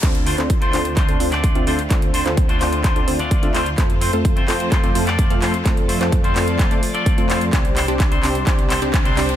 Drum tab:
HH |xxoxxxoxxxoxxxox|xxoxxxoxxxoxxxox|xxoxxxoxxxoxxxox|xxoxxxoxxxoxxxox|
CP |x--x--x-x--x----|x--x--x-x-----x-|x-----x-x--x--x-|x--x--x-x-----x-|
BD |o---o---o---o---|o---o---o---o---|o---o---o---o---|o---o---o---o---|

HH |xxoxxxoxxxoxxxox|
CP |x-x-x-x-x-x-x-x-|
BD |o---o---o---o---|